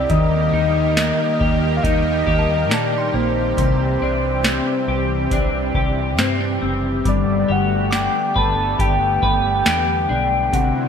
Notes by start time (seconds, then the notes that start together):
Already playing: G3 C4 D4 G4
0.09 D#2 D#3 A#3 A#4 D#5, kick, closed hi-hat
0.53 D#2 D#4
0.97 A#3 A#4, snare, closed hi-hat, tambourine
1.40 D#2 G4, kick
1.77 F5
1.83 D#2 D#4 D#5, kick, closed hi-hat
1.87 D#4
2.13 G5
2.26 D#2 G4, kick
2.38 A5
2.70 A#2 D#4 D5 A5, snare, closed hi-hat, tambourine
2.98 C6
3.14 A#1 A#3 C5
3.56 C2 C3 E3 C4 C6, kick, closed hi-hat
4.02 C2 D4
4.44 C4, snare, closed hi-hat, tambourine
4.88 C2 G4
5.31 C2 D4, kick, closed hi-hat
5.75 C2 G4, kick
6.18 G2 C4, snare, closed hi-hat, tambourine
6.40 D4
6.62 F#1 C4
7.04 G1 D3 G3 A3 B3, kick, closed hi-hat
7.08 D5
7.48 G1 G4 F#5
7.91 D4 D6, snare, closed hi-hat, tambourine
7.95 G5
8.36 G1 B4 A5, kick
8.79 G1 G4 G5, kick, closed hi-hat
9.23 G1 B4, kick
9.66 E2 G4, snare, closed hi-hat, tambourine
10.09 B1 D4
10.53 C3 C4 E4 F#5, kick, closed hi-hat